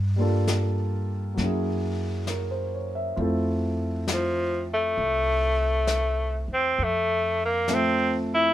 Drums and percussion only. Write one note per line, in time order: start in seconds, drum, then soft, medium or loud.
0.47 snare soft
0.47 hi-hat pedal soft
1.37 brush sweep soft
1.37 snare soft
2.27 snare soft
2.27 hi-hat pedal soft
3.17 brush sweep soft
4.08 snare soft
4.08 hi-hat pedal medium
4.97 brush sweep soft
5.87 snare soft
5.87 hi-hat pedal soft
6.77 brush sweep soft
7.68 snare soft
7.68 hi-hat pedal soft